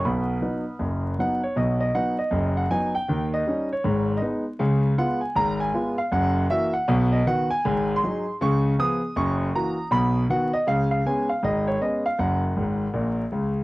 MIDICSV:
0, 0, Header, 1, 2, 480
1, 0, Start_track
1, 0, Key_signature, 5, "major"
1, 0, Tempo, 379027
1, 68, Time_signature, 4, 2, 24, 8
1, 17270, End_track
2, 0, Start_track
2, 0, Title_t, "Grand piano"
2, 0, Program_c, 0, 0
2, 61, Note_on_c, 0, 47, 72
2, 65, Note_on_c, 0, 35, 68
2, 66, Note_on_c, 0, 83, 64
2, 80, Note_on_c, 0, 71, 47
2, 84, Note_on_c, 0, 78, 46
2, 471, Note_off_c, 0, 47, 0
2, 474, Note_off_c, 0, 35, 0
2, 526, Note_on_c, 0, 54, 38
2, 529, Note_on_c, 0, 59, 44
2, 537, Note_on_c, 0, 63, 42
2, 796, Note_off_c, 0, 54, 0
2, 798, Note_off_c, 0, 59, 0
2, 804, Note_off_c, 0, 63, 0
2, 1005, Note_on_c, 0, 42, 60
2, 1007, Note_on_c, 0, 30, 58
2, 1422, Note_off_c, 0, 42, 0
2, 1423, Note_off_c, 0, 30, 0
2, 1500, Note_off_c, 0, 78, 0
2, 1502, Note_on_c, 0, 54, 34
2, 1505, Note_on_c, 0, 59, 42
2, 1514, Note_on_c, 0, 63, 40
2, 1519, Note_on_c, 0, 78, 76
2, 1546, Note_off_c, 0, 83, 0
2, 1764, Note_off_c, 0, 71, 0
2, 1767, Note_off_c, 0, 54, 0
2, 1769, Note_off_c, 0, 59, 0
2, 1770, Note_off_c, 0, 78, 0
2, 1775, Note_off_c, 0, 63, 0
2, 1815, Note_on_c, 0, 73, 66
2, 1963, Note_off_c, 0, 73, 0
2, 1976, Note_on_c, 0, 47, 70
2, 1977, Note_on_c, 0, 35, 67
2, 1989, Note_on_c, 0, 75, 77
2, 2244, Note_off_c, 0, 75, 0
2, 2285, Note_on_c, 0, 75, 77
2, 2388, Note_off_c, 0, 47, 0
2, 2389, Note_off_c, 0, 35, 0
2, 2437, Note_off_c, 0, 75, 0
2, 2461, Note_on_c, 0, 54, 44
2, 2467, Note_on_c, 0, 59, 44
2, 2467, Note_on_c, 0, 78, 83
2, 2469, Note_on_c, 0, 63, 55
2, 2724, Note_off_c, 0, 78, 0
2, 2726, Note_off_c, 0, 54, 0
2, 2731, Note_off_c, 0, 59, 0
2, 2733, Note_off_c, 0, 63, 0
2, 2767, Note_on_c, 0, 75, 74
2, 2925, Note_on_c, 0, 42, 72
2, 2934, Note_on_c, 0, 30, 74
2, 3176, Note_off_c, 0, 75, 0
2, 3254, Note_on_c, 0, 78, 70
2, 3342, Note_off_c, 0, 42, 0
2, 3347, Note_off_c, 0, 30, 0
2, 3403, Note_off_c, 0, 78, 0
2, 3423, Note_on_c, 0, 59, 41
2, 3425, Note_on_c, 0, 54, 46
2, 3428, Note_on_c, 0, 63, 57
2, 3428, Note_on_c, 0, 80, 101
2, 3684, Note_off_c, 0, 80, 0
2, 3688, Note_off_c, 0, 59, 0
2, 3689, Note_off_c, 0, 54, 0
2, 3691, Note_off_c, 0, 63, 0
2, 3729, Note_on_c, 0, 79, 89
2, 3903, Note_on_c, 0, 39, 74
2, 3909, Note_on_c, 0, 51, 72
2, 4137, Note_off_c, 0, 79, 0
2, 4221, Note_on_c, 0, 75, 86
2, 4313, Note_off_c, 0, 39, 0
2, 4316, Note_off_c, 0, 51, 0
2, 4389, Note_on_c, 0, 55, 46
2, 4395, Note_on_c, 0, 61, 50
2, 4406, Note_on_c, 0, 63, 47
2, 4639, Note_off_c, 0, 75, 0
2, 4652, Note_off_c, 0, 55, 0
2, 4657, Note_off_c, 0, 61, 0
2, 4664, Note_off_c, 0, 63, 0
2, 4714, Note_on_c, 0, 73, 72
2, 4864, Note_on_c, 0, 44, 87
2, 4867, Note_on_c, 0, 32, 71
2, 5180, Note_off_c, 0, 73, 0
2, 5273, Note_off_c, 0, 44, 0
2, 5275, Note_off_c, 0, 32, 0
2, 5281, Note_on_c, 0, 75, 74
2, 5330, Note_on_c, 0, 56, 49
2, 5340, Note_on_c, 0, 63, 57
2, 5342, Note_on_c, 0, 59, 47
2, 5358, Note_off_c, 0, 75, 0
2, 5599, Note_off_c, 0, 56, 0
2, 5606, Note_off_c, 0, 63, 0
2, 5607, Note_off_c, 0, 59, 0
2, 5817, Note_on_c, 0, 37, 77
2, 5818, Note_on_c, 0, 49, 95
2, 6230, Note_off_c, 0, 37, 0
2, 6230, Note_off_c, 0, 49, 0
2, 6307, Note_on_c, 0, 59, 52
2, 6308, Note_on_c, 0, 56, 46
2, 6311, Note_on_c, 0, 65, 52
2, 6311, Note_on_c, 0, 78, 93
2, 6567, Note_off_c, 0, 78, 0
2, 6572, Note_off_c, 0, 56, 0
2, 6572, Note_off_c, 0, 59, 0
2, 6574, Note_off_c, 0, 65, 0
2, 6599, Note_on_c, 0, 80, 67
2, 6755, Note_off_c, 0, 80, 0
2, 6783, Note_on_c, 0, 32, 85
2, 6786, Note_on_c, 0, 44, 74
2, 6794, Note_on_c, 0, 82, 108
2, 7049, Note_off_c, 0, 82, 0
2, 7097, Note_on_c, 0, 80, 88
2, 7194, Note_off_c, 0, 32, 0
2, 7195, Note_off_c, 0, 44, 0
2, 7269, Note_on_c, 0, 56, 52
2, 7272, Note_on_c, 0, 65, 58
2, 7275, Note_on_c, 0, 59, 52
2, 7503, Note_off_c, 0, 80, 0
2, 7533, Note_off_c, 0, 56, 0
2, 7535, Note_off_c, 0, 65, 0
2, 7538, Note_off_c, 0, 59, 0
2, 7574, Note_on_c, 0, 77, 82
2, 7724, Note_off_c, 0, 77, 0
2, 7742, Note_on_c, 0, 30, 70
2, 7747, Note_on_c, 0, 42, 94
2, 7755, Note_on_c, 0, 78, 107
2, 8153, Note_off_c, 0, 30, 0
2, 8157, Note_off_c, 0, 42, 0
2, 8161, Note_off_c, 0, 78, 0
2, 8224, Note_on_c, 0, 52, 50
2, 8233, Note_on_c, 0, 58, 52
2, 8237, Note_on_c, 0, 66, 57
2, 8237, Note_on_c, 0, 76, 100
2, 8490, Note_off_c, 0, 52, 0
2, 8491, Note_off_c, 0, 76, 0
2, 8497, Note_off_c, 0, 58, 0
2, 8499, Note_off_c, 0, 66, 0
2, 8529, Note_on_c, 0, 78, 84
2, 8714, Note_on_c, 0, 35, 99
2, 8714, Note_on_c, 0, 47, 105
2, 8939, Note_off_c, 0, 78, 0
2, 9023, Note_on_c, 0, 75, 83
2, 9121, Note_off_c, 0, 35, 0
2, 9121, Note_off_c, 0, 47, 0
2, 9170, Note_off_c, 0, 75, 0
2, 9197, Note_on_c, 0, 59, 55
2, 9199, Note_on_c, 0, 51, 56
2, 9209, Note_on_c, 0, 78, 102
2, 9210, Note_on_c, 0, 66, 56
2, 9459, Note_off_c, 0, 78, 0
2, 9460, Note_off_c, 0, 59, 0
2, 9461, Note_off_c, 0, 51, 0
2, 9469, Note_off_c, 0, 66, 0
2, 9504, Note_on_c, 0, 80, 110
2, 9690, Note_on_c, 0, 32, 84
2, 9691, Note_on_c, 0, 44, 102
2, 9984, Note_off_c, 0, 80, 0
2, 10081, Note_on_c, 0, 84, 99
2, 10091, Note_off_c, 0, 32, 0
2, 10091, Note_off_c, 0, 44, 0
2, 10173, Note_on_c, 0, 54, 48
2, 10180, Note_on_c, 0, 63, 53
2, 10188, Note_on_c, 0, 68, 58
2, 10431, Note_off_c, 0, 54, 0
2, 10436, Note_off_c, 0, 63, 0
2, 10443, Note_off_c, 0, 68, 0
2, 10557, Note_off_c, 0, 84, 0
2, 10649, Note_on_c, 0, 49, 102
2, 10655, Note_on_c, 0, 37, 77
2, 10663, Note_on_c, 0, 85, 111
2, 11050, Note_off_c, 0, 49, 0
2, 11054, Note_off_c, 0, 37, 0
2, 11059, Note_off_c, 0, 85, 0
2, 11125, Note_on_c, 0, 53, 48
2, 11131, Note_on_c, 0, 59, 60
2, 11140, Note_on_c, 0, 87, 118
2, 11142, Note_on_c, 0, 68, 61
2, 11386, Note_off_c, 0, 53, 0
2, 11390, Note_off_c, 0, 59, 0
2, 11398, Note_off_c, 0, 68, 0
2, 11537, Note_off_c, 0, 87, 0
2, 11601, Note_on_c, 0, 30, 85
2, 11603, Note_on_c, 0, 42, 80
2, 11610, Note_on_c, 0, 85, 99
2, 12006, Note_off_c, 0, 30, 0
2, 12007, Note_off_c, 0, 42, 0
2, 12011, Note_off_c, 0, 85, 0
2, 12083, Note_on_c, 0, 52, 51
2, 12091, Note_on_c, 0, 58, 46
2, 12097, Note_on_c, 0, 66, 58
2, 12101, Note_on_c, 0, 82, 99
2, 12345, Note_off_c, 0, 52, 0
2, 12351, Note_off_c, 0, 58, 0
2, 12355, Note_off_c, 0, 66, 0
2, 12497, Note_off_c, 0, 82, 0
2, 12550, Note_on_c, 0, 47, 91
2, 12551, Note_on_c, 0, 35, 75
2, 12559, Note_on_c, 0, 83, 117
2, 12960, Note_off_c, 0, 35, 0
2, 12960, Note_off_c, 0, 47, 0
2, 12965, Note_off_c, 0, 83, 0
2, 13035, Note_on_c, 0, 51, 48
2, 13038, Note_on_c, 0, 59, 54
2, 13043, Note_on_c, 0, 66, 58
2, 13050, Note_on_c, 0, 78, 90
2, 13299, Note_off_c, 0, 51, 0
2, 13300, Note_off_c, 0, 78, 0
2, 13301, Note_off_c, 0, 59, 0
2, 13305, Note_off_c, 0, 66, 0
2, 13341, Note_on_c, 0, 75, 95
2, 13490, Note_off_c, 0, 75, 0
2, 13512, Note_on_c, 0, 37, 73
2, 13513, Note_on_c, 0, 49, 84
2, 13523, Note_on_c, 0, 77, 99
2, 13776, Note_off_c, 0, 77, 0
2, 13818, Note_on_c, 0, 77, 85
2, 13921, Note_off_c, 0, 37, 0
2, 13921, Note_off_c, 0, 49, 0
2, 13968, Note_off_c, 0, 77, 0
2, 14002, Note_on_c, 0, 56, 55
2, 14003, Note_on_c, 0, 59, 43
2, 14011, Note_on_c, 0, 61, 50
2, 14012, Note_on_c, 0, 80, 86
2, 14261, Note_off_c, 0, 80, 0
2, 14264, Note_off_c, 0, 56, 0
2, 14264, Note_off_c, 0, 59, 0
2, 14270, Note_off_c, 0, 61, 0
2, 14301, Note_on_c, 0, 77, 76
2, 14450, Note_off_c, 0, 77, 0
2, 14472, Note_on_c, 0, 32, 81
2, 14472, Note_on_c, 0, 44, 66
2, 14492, Note_on_c, 0, 75, 89
2, 14741, Note_off_c, 0, 75, 0
2, 14784, Note_on_c, 0, 73, 75
2, 14880, Note_off_c, 0, 32, 0
2, 14880, Note_off_c, 0, 44, 0
2, 14931, Note_off_c, 0, 73, 0
2, 14958, Note_on_c, 0, 56, 44
2, 14959, Note_on_c, 0, 59, 38
2, 14962, Note_on_c, 0, 61, 48
2, 14963, Note_on_c, 0, 75, 78
2, 15216, Note_off_c, 0, 75, 0
2, 15220, Note_off_c, 0, 56, 0
2, 15221, Note_off_c, 0, 59, 0
2, 15223, Note_off_c, 0, 61, 0
2, 15267, Note_on_c, 0, 77, 82
2, 15413, Note_off_c, 0, 77, 0
2, 15428, Note_on_c, 0, 30, 69
2, 15434, Note_on_c, 0, 42, 75
2, 15437, Note_on_c, 0, 78, 74
2, 15837, Note_off_c, 0, 30, 0
2, 15841, Note_off_c, 0, 42, 0
2, 15910, Note_on_c, 0, 32, 71
2, 15916, Note_on_c, 0, 44, 64
2, 16270, Note_off_c, 0, 32, 0
2, 16274, Note_off_c, 0, 44, 0
2, 16382, Note_on_c, 0, 46, 71
2, 16384, Note_on_c, 0, 34, 68
2, 16657, Note_off_c, 0, 78, 0
2, 16744, Note_off_c, 0, 46, 0
2, 16746, Note_off_c, 0, 34, 0
2, 16862, Note_on_c, 0, 49, 62
2, 16867, Note_on_c, 0, 37, 69
2, 17224, Note_off_c, 0, 49, 0
2, 17227, Note_off_c, 0, 37, 0
2, 17270, End_track
0, 0, End_of_file